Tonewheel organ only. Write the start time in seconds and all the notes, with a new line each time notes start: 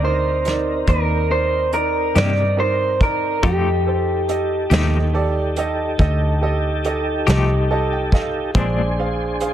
Already playing: C4 D#4 A#4
3.44 D#4 G4 A4
8.55 D4 G#4 C5